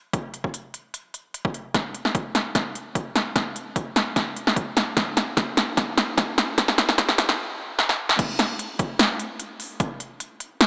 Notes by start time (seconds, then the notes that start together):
0.13 kick, closed hi-hat
0.34 closed hi-hat
0.44 kick
0.54 closed hi-hat
0.74 closed hi-hat
0.94 closed hi-hat
1.14 closed hi-hat
1.34 closed hi-hat
1.45 kick
1.54 closed hi-hat
1.74 kick, snare, closed hi-hat
1.95 closed hi-hat
2.05 snare
2.15 kick, closed hi-hat
2.35 snare, closed hi-hat
2.55 kick, snare, closed hi-hat
2.75 closed hi-hat
2.95 kick, closed hi-hat
3.16 snare, closed hi-hat
3.36 kick, snare, closed hi-hat
3.56 closed hi-hat
3.76 kick, closed hi-hat
3.96 snare, closed hi-hat
4.16 kick, snare, closed hi-hat
4.36 closed hi-hat
4.47 snare
4.56 kick, closed hi-hat
4.77 snare, closed hi-hat
4.97 kick, snare, closed hi-hat
5.17 snare, closed hi-hat
5.37 kick, snare, closed hi-hat
5.57 snare, closed hi-hat
5.77 kick, snare, closed hi-hat
5.98 snare, closed hi-hat
6.18 kick, snare, closed hi-hat
6.38 snare, closed hi-hat
6.58 kick, snare, closed hi-hat
6.68 snare
6.78 snare, closed hi-hat
6.89 snare
6.98 kick, snare, closed hi-hat
7.09 snare
7.18 snare, closed hi-hat
7.29 snare
7.79 snare
7.89 snare
8.09 snare
8.19 kick, closed hi-hat, crash
8.39 snare, closed hi-hat
8.59 closed hi-hat
8.79 kick, closed hi-hat
8.99 snare, closed hi-hat
9.19 closed hi-hat
9.39 closed hi-hat
9.60 open hi-hat
9.80 kick, closed hi-hat
10.00 closed hi-hat
10.20 closed hi-hat
10.40 closed hi-hat
10.61 snare, closed hi-hat